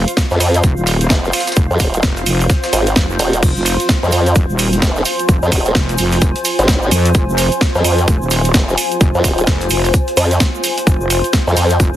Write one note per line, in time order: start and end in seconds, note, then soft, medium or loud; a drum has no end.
0.00 11.96 F4 medium
0.00 11.96 C5 medium
0.00 4.28 F5 medium
0.08 closed hi-hat medium
0.08 shaker soft
0.17 kick loud
0.17 snare loud
0.17 closed hi-hat soft
0.17 tambourine loud
0.17 shaker medium
0.30 0.39 F2 loud
0.30 snare medium
0.30 shaker soft
0.40 0.62 F2 loud
0.40 snare loud
0.40 open hi-hat loud
0.40 tambourine medium
0.40 shaker medium
0.54 snare medium
0.54 closed hi-hat medium
0.54 shaker soft
0.63 0.75 F1 loud
0.63 kick loud
0.63 closed hi-hat medium
0.63 tambourine medium
0.63 shaker medium
0.77 1.09 D#1 loud
0.77 shaker soft
0.87 open hi-hat loud
0.87 tambourine medium
0.87 shaker medium
1.01 snare soft
1.01 closed hi-hat medium
1.01 shaker soft
1.10 1.32 F1 loud
1.10 kick loud
1.10 snare loud
1.10 closed hi-hat medium
1.10 tambourine medium
1.10 shaker medium
1.24 snare soft
1.24 shaker soft
1.33 snare medium
1.33 open hi-hat loud
1.33 tambourine medium
1.33 shaker medium
1.40 snare medium
1.40 tambourine medium
1.47 snare medium
1.47 closed hi-hat medium
1.47 tambourine medium
1.47 shaker soft
1.52 snare medium
1.52 tambourine medium
1.52 shaker medium
1.57 1.68 F1 loud
1.57 kick loud
1.57 closed hi-hat medium
1.57 tambourine medium
1.71 1.78 F2 loud
1.71 shaker soft
1.79 2.02 D#1 medium
1.79 kick medium
1.79 open hi-hat loud
1.79 tambourine medium
1.79 shaker medium
1.94 closed hi-hat medium
1.94 shaker soft
2.03 2.25 F1 loud
2.03 kick loud
2.03 snare loud
2.03 closed hi-hat medium
2.03 tambourine medium
2.03 shaker medium
2.17 closed hi-hat soft
2.17 shaker soft
2.26 2.48 F1 loud
2.26 open hi-hat loud
2.26 tambourine medium
2.26 shaker medium
2.40 open hi-hat medium
2.40 shaker soft
2.49 kick loud
2.49 snare loud
2.49 closed hi-hat medium
2.49 tambourine medium
2.49 shaker soft
2.63 snare loud
2.63 tambourine medium
2.63 shaker soft
2.73 2.95 G#1 loud
2.73 snare loud
2.73 open hi-hat loud
2.73 tambourine medium
2.73 shaker medium
2.86 snare medium
2.86 closed hi-hat medium
2.86 shaker soft
2.96 3.18 F1 loud
2.96 kick loud
2.96 snare loud
2.96 closed hi-hat medium
2.96 tambourine medium
2.96 shaker soft
3.10 shaker soft
3.19 3.41 D#1 loud
3.19 open hi-hat loud
3.19 tambourine medium
3.19 shaker medium
3.33 closed hi-hat medium
3.33 shaker soft
3.43 3.54 F1 medium
3.43 kick loud
3.43 closed hi-hat medium
3.43 crash medium
3.43 tambourine medium
3.43 shaker medium
3.56 3.78 F1 loud
3.56 shaker soft
3.66 open hi-hat loud
3.66 tambourine medium
3.66 shaker loud
3.80 closed hi-hat medium
3.80 shaker soft
3.89 kick loud
3.89 snare loud
3.89 closed hi-hat medium
3.89 tambourine medium
3.89 shaker medium
4.03 4.11 F2 loud
4.03 snare medium
4.03 shaker soft
4.12 4.34 F2 medium
4.12 open hi-hat loud
4.12 tambourine medium
4.12 shaker loud
4.26 11.72 G#5 medium
4.26 closed hi-hat medium
4.26 shaker soft
4.35 4.47 F1 loud
4.35 kick loud
4.35 closed hi-hat medium
4.35 tambourine medium
4.35 shaker medium
4.50 4.81 D#1 loud
4.50 shaker soft
4.59 open hi-hat loud
4.59 tambourine medium
4.59 shaker loud
4.72 snare soft
4.72 closed hi-hat medium
4.72 shaker soft
4.82 5.04 F1 loud
4.82 kick loud
4.82 snare loud
4.82 closed hi-hat medium
4.82 tambourine loud
4.82 shaker medium
4.96 snare soft
4.96 shaker soft
5.05 open hi-hat loud
5.05 tambourine medium
5.05 shaker medium
5.19 closed hi-hat medium
5.19 shaker soft
5.29 5.40 F1 loud
5.29 kick loud
5.29 closed hi-hat medium
5.29 tambourine medium
5.29 shaker medium
5.42 5.50 F2 loud
5.42 shaker soft
5.52 5.74 D#1 loud
5.52 kick medium
5.52 open hi-hat loud
5.52 tambourine medium
5.52 shaker medium
5.65 closed hi-hat medium
5.65 shaker soft
5.75 5.97 F1 loud
5.75 kick loud
5.75 snare loud
5.75 closed hi-hat medium
5.75 tambourine medium
5.75 shaker medium
5.89 closed hi-hat soft
5.89 shaker soft
5.98 6.20 F1 medium
5.98 open hi-hat loud
5.98 tambourine medium
5.98 shaker loud
6.12 open hi-hat medium
6.12 shaker soft
6.21 6.33 F1 loud
6.21 kick loud
6.21 closed hi-hat medium
6.21 tambourine medium
6.21 shaker medium
6.36 closed hi-hat soft
6.36 shaker soft
6.45 open hi-hat loud
6.45 tambourine medium
6.45 shaker loud
6.59 6.90 G#1 loud
6.59 snare medium
6.59 closed hi-hat medium
6.59 shaker soft
6.68 kick loud
6.68 snare loud
6.68 closed hi-hat medium
6.68 tambourine medium
6.68 shaker medium
6.82 shaker soft
6.91 7.13 F2 loud
6.91 open hi-hat loud
6.91 tambourine medium
6.91 shaker loud
7.05 closed hi-hat medium
7.05 closed hi-hat soft
7.05 shaker soft
7.14 7.26 F1 medium
7.14 kick loud
7.14 closed hi-hat medium
7.14 tambourine medium
7.14 shaker medium
7.29 7.50 F1 medium
7.29 shaker soft
7.38 open hi-hat loud
7.38 tambourine medium
7.38 shaker medium
7.52 closed hi-hat medium
7.52 shaker soft
7.61 kick loud
7.61 snare loud
7.61 closed hi-hat soft
7.61 tambourine medium
7.61 shaker medium
7.75 7.83 F2 loud
7.75 snare medium
7.75 shaker soft
7.84 8.06 F2 loud
7.84 open hi-hat loud
7.84 shaker loud
7.98 closed hi-hat medium
7.98 shaker soft
8.08 8.19 F1 loud
8.08 kick loud
8.08 closed hi-hat medium
8.08 tambourine medium
8.08 shaker medium
8.22 8.53 D#1 loud
8.22 shaker soft
8.31 open hi-hat loud
8.31 tambourine medium
8.31 shaker medium
8.44 snare soft
8.44 closed hi-hat medium
8.44 shaker soft
8.54 8.76 F1 loud
8.54 kick loud
8.54 snare loud
8.54 closed hi-hat medium
8.54 tambourine medium
8.54 shaker medium
8.68 snare soft
8.68 shaker soft
8.78 open hi-hat loud
8.78 tambourine medium
8.78 shaker loud
8.92 closed hi-hat medium
8.92 shaker soft
9.00 9.13 F1 loud
9.00 kick loud
9.00 closed hi-hat soft
9.00 tambourine medium
9.00 shaker medium
9.14 9.23 F2 loud
9.14 shaker soft
9.24 9.46 D#1 medium
9.24 kick medium
9.24 open hi-hat loud
9.24 tambourine medium
9.24 shaker loud
9.38 closed hi-hat medium
9.38 shaker soft
9.47 9.69 F1 loud
9.47 kick loud
9.47 snare loud
9.47 closed hi-hat soft
9.47 tambourine medium
9.47 shaker medium
9.61 closed hi-hat soft
9.61 shaker soft
9.70 9.92 F1 loud
9.70 open hi-hat loud
9.70 tambourine medium
9.70 shaker loud
9.85 open hi-hat medium
9.85 shaker soft
9.94 kick loud
9.94 closed hi-hat medium
9.94 tambourine medium
9.94 shaker medium
10.07 closed hi-hat soft
10.07 shaker soft
10.17 10.39 F2 loud
10.17 open hi-hat loud
10.17 tambourine medium
10.17 shaker medium
10.31 snare medium
10.31 closed hi-hat medium
10.31 shaker soft
10.40 kick loud
10.40 snare loud
10.40 closed hi-hat medium
10.40 tambourine medium
10.40 shaker medium
10.55 shaker soft
10.64 open hi-hat loud
10.64 tambourine medium
10.64 shaker loud
10.78 closed hi-hat soft
10.78 closed hi-hat medium
10.78 shaker soft
10.87 10.99 F1 loud
10.87 kick loud
10.87 closed hi-hat medium
10.87 tambourine medium
10.87 shaker medium
11.01 11.22 F1 loud
11.01 shaker soft
11.10 open hi-hat loud
11.10 tambourine medium
11.10 shaker loud
11.24 closed hi-hat medium
11.24 shaker soft
11.33 kick loud
11.33 snare loud
11.33 closed hi-hat soft
11.33 tambourine medium
11.33 shaker medium
11.47 11.55 F2 loud
11.47 snare medium
11.47 shaker soft
11.57 11.78 F2 loud
11.57 open hi-hat loud
11.57 tambourine medium
11.57 shaker loud
11.69 11.96 D#5 medium
11.69 closed hi-hat medium
11.69 shaker soft
11.80 11.92 F1 loud
11.80 kick loud
11.80 closed hi-hat medium
11.80 tambourine medium
11.80 shaker medium